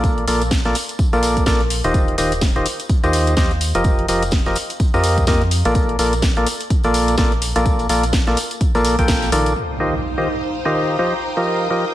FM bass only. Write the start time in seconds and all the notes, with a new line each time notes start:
Already playing: A#1
0.28 A#1
0.65 A#1
1.13 A#1
1.47 A#1
1.84 D#1
2.18 D#1
2.56 D#1
3.04 D#2
3.75 F1
4.09 F1
4.46 F1
4.94 F2
5.28 F2
5.65 A#1
5.99 A#1
6.37 A#1
6.84 A#1
7.18 A#1
7.56 A#1
7.89 A#1
8.27 A#1
8.75 A#1
8.99 A#1
9.32 A#1